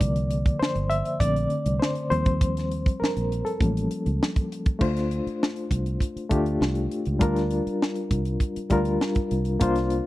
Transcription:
Already playing: D5
0.00 C2 D3 F3 A#3, kick, closed hi-hat
0.16 closed hi-hat
0.31 closed hi-hat
0.46 kick, closed hi-hat
0.59 C5, muted fingered electric bass stroke, snare
0.76 G1, closed hi-hat
0.90 E5, closed hi-hat
1.05 closed hi-hat
1.20 A#1 D3 A3 C4 D5, kick, closed hi-hat
1.36 closed hi-hat
1.50 closed hi-hat
1.66 C2, closed hi-hat
1.80 C5, snare
1.96 closed hi-hat
2.10 D#2 F3 G3 C4 C5, closed hi-hat
2.26 kick, closed hi-hat
2.41 kick, closed hi-hat
2.57 snare, closed hi-hat
2.71 closed hi-hat
2.86 kick, closed hi-hat
3.00 A#4, muted fingered electric bass stroke, snare
3.17 A#1, closed hi-hat
3.32 closed hi-hat
3.45 A4, closed hi-hat
3.60 A1 F3 G3 A#3 C#4, kick, closed hi-hat
3.77 closed hi-hat
3.91 closed hi-hat
4.06 C#2, closed hi-hat
4.23 snare
4.36 kick, closed hi-hat
4.52 closed hi-hat
4.66 kick, closed hi-hat
4.79 D2 A3 D4 F4 C5, kick, crash
4.97 snare, closed hi-hat
5.11 closed hi-hat
5.27 muted fingered electric bass stroke, closed hi-hat
5.43 snare
5.56 closed hi-hat
5.71 C2, kick, closed hi-hat
5.86 closed hi-hat
6.00 kick, closed hi-hat
6.16 muted fingered electric bass stroke, closed hi-hat
6.29 D2 A3 D4 F4 G4, kick, closed hi-hat
6.46 closed hi-hat
6.61 C2, snare
6.75 closed hi-hat
6.91 closed hi-hat
7.06 C#2, closed hi-hat
7.19 D2 G3 D4 F4 A#4, kick, closed hi-hat
7.36 snare, closed hi-hat
7.51 closed hi-hat
7.67 muted fingered electric bass stroke, closed hi-hat
7.82 snare
7.96 closed hi-hat
8.11 C2, kick, closed hi-hat
8.25 closed hi-hat
8.40 kick, closed hi-hat
8.56 muted fingered electric bass stroke, closed hi-hat
8.70 D2 G3 D4 F4 A#4, kick, closed hi-hat
8.85 closed hi-hat
9.01 snare
9.15 kick, closed hi-hat
9.31 C2, closed hi-hat
9.45 closed hi-hat
9.60 C2 A#3 D4 F4 C5, kick, closed hi-hat
9.76 snare, closed hi-hat
9.90 closed hi-hat

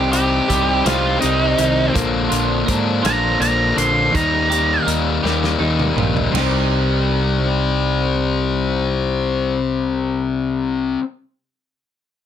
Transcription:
Already playing: C2 C3 G3 C4 G4
0.11 G3 C4 D#4 G4, closed hi-hat
0.48 C2 C3 G3 C4 D#4, kick, closed hi-hat
0.84 C2 C3 G3 C4 D#4 F4 G4, snare, closed hi-hat
1.20 C2 C3 G3 C4 D#4, closed hi-hat
1.57 C2 D#3, closed hi-hat
1.93 A#1 A#2 D3 F3 A#3 D4, kick, closed hi-hat
2.29 A#1 F3 A#3 D4 F4, closed hi-hat
2.67 G#2 D3 F3 A#3 D4, kick, closed hi-hat
3.02 A#1 A#2 D3 F3 A#3 D4 F4 A#5, snare, closed hi-hat
3.40 A#1 D3 F3 A#3 D4 A#5, closed hi-hat
3.76 A#1 D3 C6, closed hi-hat
4.13 D#2 D#3 G3 A#3 D#4 A#5, kick, closed hi-hat
4.49 G3 A#3 D#4 G4, closed hi-hat
4.87 D#2 D#3 G3 A#3 D#4, closed hi-hat
5.23 D#2 D#3 G3 A#3 D#4 G4, snare
5.44 snare
5.60 D#2 D#3 G3 A#3 D#4
5.79 mid tom
5.96 A#1 F3, mid tom
6.17 floor tom
6.33 C2 C3 G3 D#4 G4, snare, crash
6.37 C4

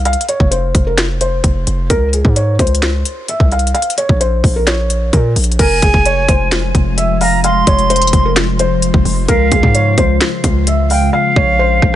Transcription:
Already playing: C2
0.05 F5, closed hi-hat
0.13 closed hi-hat
0.21 closed hi-hat
0.29 C#5, closed hi-hat
0.40 F1, kick
0.51 C5, closed hi-hat
0.75 F1, kick, closed hi-hat
0.87 A#4
0.98 snare, clap, closed hi-hat
1.21 C5, closed hi-hat
1.44 F1, kick, closed hi-hat
1.67 F1, closed hi-hat
1.90 C#2 A#4, kick, closed hi-hat
2.13 G#4, closed hi-hat
2.25 G#2, kick
2.36 C#5, closed hi-hat
2.59 C#2 C5, kick, closed hi-hat
2.67 closed hi-hat
2.75 closed hi-hat
2.82 snare, clap, closed hi-hat
3.05 closed hi-hat
3.28 E5, closed hi-hat
3.40 C2, kick
3.52 F5, closed hi-hat
3.59 closed hi-hat
3.67 closed hi-hat
3.74 F5, closed hi-hat
3.82 closed hi-hat
3.90 closed hi-hat
3.98 C#5, closed hi-hat
4.09 A#1, kick
4.20 C5, closed hi-hat
4.44 A#1, kick, open hi-hat
4.56 A#4
4.67 C#5, snare, clap, closed hi-hat
4.90 closed hi-hat
5.13 A#2 A#4, kick, closed hi-hat
5.36 A#1, closed hi-hat, open hi-hat
5.44 closed hi-hat
5.52 closed hi-hat
5.59 F1 C3 F3 G#3 F4 A#4 G#5, kick, closed hi-hat, crash
5.82 F1 G#4, kick, closed hi-hat
5.94 F1, kick
6.05 C#5, closed hi-hat
6.28 F1 C5, kick, closed hi-hat
6.52 snare, clap, closed hi-hat
6.75 F1, kick, closed hi-hat
6.98 E5, closed hi-hat
7.21 F5 A#5, open hi-hat
7.44 F5 C6, closed hi-hat
7.67 F1 C#5, kick, closed hi-hat
7.79 closed hi-hat
7.90 C5, closed hi-hat
7.96 closed hi-hat
8.02 closed hi-hat
8.07 closed hi-hat
8.13 F1, kick, closed hi-hat
8.25 A#4
8.36 snare, clap, closed hi-hat
8.59 C5, closed hi-hat
8.82 closed hi-hat
8.94 F1, kick
9.05 F1, open hi-hat
9.28 C#2 C#3 A#4 F5, kick, closed hi-hat
9.52 C#2 G#4, kick, closed hi-hat
9.63 G#2, kick
9.74 C#5, closed hi-hat
9.98 C#2 C5, kick, closed hi-hat
10.21 snare, clap, closed hi-hat
10.44 C#2, kick, closed hi-hat
10.67 E5, closed hi-hat
10.90 F5 G5, open hi-hat
11.13 A#3 F5
11.36 A#1 C#5, kick
11.59 C5
11.82 A#1, kick, cross-stick

